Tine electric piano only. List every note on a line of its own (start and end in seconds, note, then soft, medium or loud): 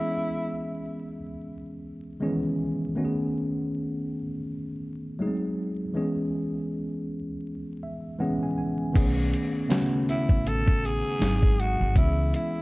0.00 1.18 E3 medium
0.00 1.19 G#3 medium
0.00 1.19 B3 medium
0.00 1.20 C#4 medium
0.00 1.20 G#4 medium
2.20 2.28 D#3 medium
2.20 2.84 G#3 medium
2.20 2.85 B3 medium
2.20 2.85 C#4 medium
2.20 2.85 G#4 medium
2.26 2.87 E3 medium
2.95 4.19 D#3 medium
2.95 4.19 A3 medium
2.95 4.20 B3 medium
2.95 4.20 C#4 medium
2.95 3.04 F#4 medium
3.04 4.24 G#4 medium
5.19 5.83 F#3 medium
5.19 5.84 G#3 medium
5.19 5.28 A3 medium
5.19 5.84 D#4 medium
5.19 5.85 G#4 medium
5.27 5.87 C4 medium
5.94 7.19 E3 medium
5.94 7.19 G#3 medium
5.94 7.19 B3 medium
5.94 7.20 C#4 medium
5.94 7.20 G#4 medium
7.83 8.18 E5 medium
8.19 8.83 E3 medium
8.19 8.83 G#3 medium
8.19 8.84 B3 medium
8.19 8.84 C#4 medium
8.19 8.85 G#4 medium
8.19 8.41 F#5 medium
8.43 8.57 G#5 medium
8.58 8.93 G#5 medium
8.93 9.58 D#3 medium
8.93 9.58 A3 medium
8.93 9.58 B3 medium
8.93 9.59 C#4 medium
8.93 9.59 G#4 loud
9.68 10.93 C#3 medium
9.68 10.94 A3 medium
9.68 10.94 B3 medium
9.68 10.94 C#4 medium
9.68 10.95 F#4 medium
11.19 11.83 F#3 medium
11.19 11.84 G#3 medium
11.19 11.84 C4 medium
11.19 11.84 D#4 medium
11.19 11.85 G#4 medium
11.94 12.58 E3 medium
11.94 12.59 G#3 medium
11.94 12.59 B3 medium
11.94 12.60 C#4 medium
11.94 12.04 F#4 medium
12.04 12.62 G#4 medium